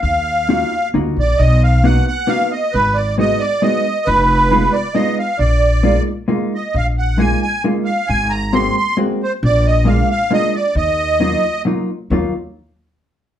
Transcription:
<<
  \new Staff \with { instrumentName = "Accordion" } { \time 3/4 \key ees \minor \tempo 4 = 134 f''2 r8 d''8 | dis''8 f''8 fis''8 fis''8 f''8 dis''8 | ces''8 d''8 ees''8 d''8 ees''4 | ces''4. d''8 ees''8 f''8 |
d''4. r4 ees''8 | f''8 ges''8 aes''8 aes''8 r8 f''8 | aes''8 bes''8 c'''8 c'''8 r8 c''8 | d''8 ees''8 f''8 f''8 ees''8 d''8 |
ees''2 r4 | r2. | }
  \new Staff \with { instrumentName = "Hollow-body jazz guitar" } { \time 3/4 \key ees \minor r4 <bes ees' f' ges'>8 r8 <bes ees' f' ges'>8 r8 | r4 <ais b dis' fis'>8 r8 <ais b dis' fis'>8 r8 | r4 <aes ces' ees' ges'>8 r8 <aes ces' ees' ges'>8 r8 | r4 <aes ces' ees' f'>8 r8 <aes ces' ees' f'>8 r8 |
r4 <aes bes ees' f'>8 r8 <aes bes ees' f'>8 r8 | r4 <aes bes ees' f'>8 r8 <aes bes ees' f'>8 r8 | r4 <aes bes c' ges'>8 r8 <aes bes c' ges'>8 r8 | r4 <aes bes d' f'>8 r8 <aes bes d' f'>8 r8 |
r4 <ges bes ees' f'>8 r8 <ges bes ees' f'>8 r8 | <ges bes ees' f'>8 r2 r8 | }
  \new Staff \with { instrumentName = "Upright bass" } { \clef bass \time 3/4 \key ees \minor ees,2 d,8 bes,,8 | b,,2 r4 | aes,,2 r4 | f,,2 r4 |
bes,,2 r4 | bes,,2 r4 | aes,,2 r4 | bes,,2 r4 |
ees,2 r4 | ees,8 r2 r8 | }
>>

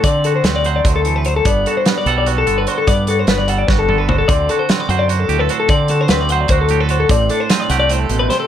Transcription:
<<
  \new Staff \with { instrumentName = "Clean electric guitar" } { \time 7/8 \key g \major \tempo 4 = 149 d''8 a'16 c''16 b'16 d''16 fis''16 d''16 c''16 a'8 b'16 c''16 a'16 | d''8 a'16 c''16 b'16 d''16 fis''16 d''16 b'16 a'8 b'16 c''16 a'16 | d''8 a'16 c''16 b'16 d''16 fis''16 d''16 b'16 a'8 b'16 c''16 a'16 | d''8 a'16 c''16 b'16 d''16 fis''16 d''16 c''16 a'8 b'16 c''16 a'16 |
d''8 a'16 c''16 b'16 d''16 fis''16 d''16 c''16 a'8 b'16 c''16 a'16 | d''8 a'16 c''16 b'16 d''16 fis''16 d''16 c''16 a'8 b'16 c''16 a'16 | }
  \new Staff \with { instrumentName = "Clean electric guitar" } { \time 7/8 \key g \major << { c'8 fis'8 c'8 c''2 | b8 fis'8 b8 a'8 fis'8 a'8 fis'8 | b8 fis'8 b8 a'8 fis'8 a'8 fis'8 | c'8 fis'8 c'8 c''8 fis'8 g'16 a'16 fis'8 |
c'8 fis'8 c'8 c''8 fis'8 g'16 a'16 fis'8 | c'8 d'8 c'8 g'2 | } \\ { d4. fis8 d8 e8 fis8 | g,4. g4 d4 | g,4. g4 d4 | d4. fis4 a,4 |
d4. fis4 a,4 | a,4. a8 a,8 b,8 c8 | } >> }
  \new Staff \with { instrumentName = "Fingered electric bass" } { \clef bass \time 7/8 \key g \major d4 d,4 d,4. | g,,8 r4 b,,4 g,,8 r8 | g,4 g,,4 g,,4. | d,8 r4 fis,4 d,8 r8 |
d4 d,4 d,4. | a,,8 r4 c,4 a,,8 r8 | }
  \new DrumStaff \with { instrumentName = "Drums" } \drummode { \time 7/8 <hh bd>8 hh8 <hh sn>8 hh8 <hh bd>8 hh8 hh8 | <hh bd>8 hh8 <hh sn>8 hh8 hh8 hh8 hh8 | <hh bd>8 hh8 <hh sn>8 hh8 <bd sn>8 toml8 tomfh8 | <hh bd>8 hh8 <hh sn>8 hh8 hh8 hh8 hh8 |
<hh bd>8 hh8 <hh sn>8 hh8 <hh bd>8 hh8 hh8 | <hh bd>8 hh8 <hh sn>8 <hh sn>8 hh8 hh8 <hh sn>8 | }
>>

